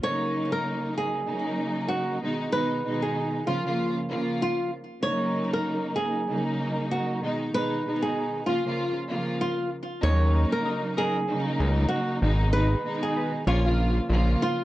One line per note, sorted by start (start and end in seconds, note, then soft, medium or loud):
0.02 1.19 C#3 medium
0.02 1.20 F#3 medium
0.02 1.20 A#3 medium
0.02 1.20 D#4 loud
0.02 0.50 C#5 loud
0.52 0.94 A#4 medium
0.98 1.44 G#4 medium
1.27 2.21 C#3 loud
1.27 2.21 F#3 medium
1.27 2.22 A#3 medium
1.27 2.22 D#4 loud
1.88 2.18 F#4 medium
2.22 2.51 B2 medium
2.22 2.51 D#3 medium
2.22 2.51 G#3 medium
2.22 2.52 D#4 loud
2.52 2.82 B2 medium
2.52 2.82 D#3 medium
2.52 2.83 G#3 medium
2.52 2.83 D#4 loud
2.52 2.99 B4 medium
2.85 3.43 B2 loud
2.85 3.43 D#3 medium
2.85 3.43 G#3 medium
2.85 3.44 D#4 loud
3.02 3.44 G#4 medium
3.46 3.63 C#3 medium
3.46 3.64 F3 medium
3.46 3.64 A#3 medium
3.46 3.94 F4 medium
3.46 3.65 F4 loud
3.64 3.93 C#3 medium
3.64 3.93 F3 medium
3.64 3.94 A#3 medium
3.64 3.94 F4 loud
4.09 4.68 C#3 medium
4.09 4.68 F3 medium
4.09 4.68 A#3 medium
4.09 4.68 F4 loud
4.42 4.70 F4 medium
5.02 6.19 C#3 medium
5.02 6.20 F#3 medium
5.02 6.20 A#3 medium
5.02 6.20 D#4 loud
5.02 5.49 C#5 loud
5.53 5.95 A#4 medium
5.96 6.43 G#4 medium
6.27 7.21 C#3 loud
6.27 7.21 F#3 medium
6.27 7.22 A#3 medium
6.27 7.22 D#4 loud
6.91 7.19 F#4 medium
7.22 7.51 B2 medium
7.22 7.51 D#3 medium
7.22 7.51 G#3 medium
7.22 7.52 D#4 loud
7.53 7.82 B2 medium
7.53 7.82 D#3 medium
7.53 7.83 G#3 medium
7.53 7.83 D#4 loud
7.53 8.00 B4 medium
7.85 8.43 B2 medium
7.85 8.43 D#3 medium
7.85 8.43 G#3 medium
7.85 8.44 D#4 loud
8.02 8.44 G#4 medium
8.45 8.63 C#3 loud
8.45 8.64 F3 medium
8.45 8.64 A#3 medium
8.45 8.93 F4 medium
8.45 8.65 F4 loud
8.64 8.93 C#3 medium
8.64 8.93 F3 medium
8.64 8.94 A#3 medium
8.64 8.94 F4 loud
9.09 9.68 C#3 loud
9.09 9.68 F3 medium
9.09 9.68 A#3 medium
9.09 9.68 F4 loud
9.41 9.69 F4 medium
10.02 10.46 D#2 loud
10.02 11.19 C#3 loud
10.02 11.20 F#3 medium
10.02 11.20 A#3 loud
10.02 11.20 D#4 loud
10.02 10.50 C#5 loud
10.52 10.94 A#4 medium
10.65 10.81 F#3 medium
10.65 10.81 D#4 medium
10.65 10.81 A#4 medium
10.97 11.17 F#3 loud
10.97 11.17 D#4 medium
10.97 11.44 G#4 medium
10.97 11.17 A#4 loud
11.27 12.21 C#3 loud
11.27 12.22 F#3 medium
11.27 12.22 A#3 medium
11.27 12.22 D#4 loud
11.60 11.86 C#2 loud
11.89 12.18 F#4 medium
12.22 12.76 G#1 medium
12.22 12.51 B2 loud
12.22 12.51 D#3 medium
12.22 12.51 G#3 medium
12.22 12.52 D#4 loud
12.53 12.82 B2 loud
12.53 12.82 D#3 medium
12.53 12.83 G#3 medium
12.53 12.83 D#4 loud
12.53 13.00 B4 medium
12.85 13.43 B2 loud
12.85 13.43 D#3 loud
12.85 13.43 G#3 medium
12.85 13.44 D#4 loud
13.03 13.44 G#4 medium
13.16 13.31 G#3 medium
13.16 13.31 D#4 medium
13.16 13.31 B4 medium
13.46 14.01 A#1 loud
13.46 13.63 C#3 loud
13.46 13.64 F3 medium
13.46 13.65 A#3 medium
13.46 13.67 A#3 medium
13.46 13.67 F4 medium
13.46 13.94 F4 medium
13.46 13.65 F4 loud
13.46 13.67 C#5 loud
13.65 13.93 C#3 medium
13.65 13.94 F3 medium
13.65 13.94 A#3 loud
13.65 13.94 F4 loud
14.09 14.36 A#1 medium
14.09 14.64 C#3 loud
14.09 14.64 F3 loud
14.09 14.64 A#3 medium
14.09 14.64 F4 loud
14.42 14.64 F4 medium